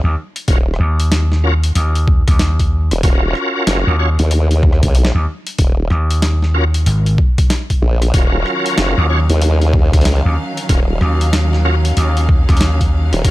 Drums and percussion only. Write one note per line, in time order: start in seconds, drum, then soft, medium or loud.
0.36 closed hi-hat medium
0.48 kick loud
0.48 closed hi-hat medium
0.74 cross-stick soft
1.00 closed hi-hat medium
1.12 snare loud
1.12 closed hi-hat medium
1.32 snare soft
1.64 closed hi-hat medium
1.75 closed hi-hat medium
1.95 closed hi-hat soft
2.08 kick loud
2.28 kick loud
2.28 cross-stick soft
2.28 closed hi-hat medium
2.39 snare loud
2.39 closed hi-hat medium
2.59 kick medium
2.59 closed hi-hat soft
2.91 cross-stick soft
2.91 closed hi-hat medium
3.03 kick loud
3.03 closed hi-hat medium
3.35 cross-stick soft
3.67 snare loud
3.67 closed hi-hat medium
4.19 closed hi-hat medium
4.31 closed hi-hat medium
4.51 closed hi-hat soft
4.63 kick loud
4.73 cross-stick soft
4.83 kick loud
4.83 closed hi-hat medium
4.95 closed hi-hat medium
5.05 snare loud
5.47 closed hi-hat medium
5.58 kick loud
5.58 closed hi-hat medium
5.90 cross-stick soft
6.11 closed hi-hat medium
6.22 snare loud
6.22 closed hi-hat medium
6.42 snare soft
6.74 closed hi-hat medium
6.86 closed hi-hat medium
7.06 closed hi-hat soft
7.18 kick loud
7.38 kick loud
7.38 closed hi-hat soft
7.50 snare loud
7.50 closed hi-hat medium
7.70 kick medium
7.70 closed hi-hat soft
8.02 cross-stick soft
8.02 closed hi-hat soft
8.14 kick loud
8.14 closed hi-hat medium
8.46 cross-stick soft
8.66 closed hi-hat soft
8.78 snare loud
8.78 closed hi-hat medium
9.30 closed hi-hat soft
9.42 closed hi-hat medium
9.62 closed hi-hat soft
9.73 kick loud
9.93 kick loud
9.93 cross-stick soft
9.93 closed hi-hat soft
10.01 closed hi-hat soft
10.05 snare loud
10.05 closed hi-hat medium
10.12 closed hi-hat soft
10.16 closed hi-hat soft
10.57 closed hi-hat soft
10.69 kick loud
10.69 closed hi-hat medium
11.01 cross-stick soft
11.21 closed hi-hat soft
11.33 snare loud
11.33 closed hi-hat medium
11.53 snare soft
11.85 closed hi-hat medium
11.97 closed hi-hat medium
12.17 closed hi-hat soft
12.29 kick loud
12.49 kick loud
12.49 cross-stick soft
12.49 closed hi-hat soft
12.57 snare loud
12.57 closed hi-hat soft
12.61 closed hi-hat medium
12.81 kick medium
12.81 closed hi-hat soft
13.13 cross-stick soft
13.13 closed hi-hat soft
13.25 kick loud
13.25 closed hi-hat medium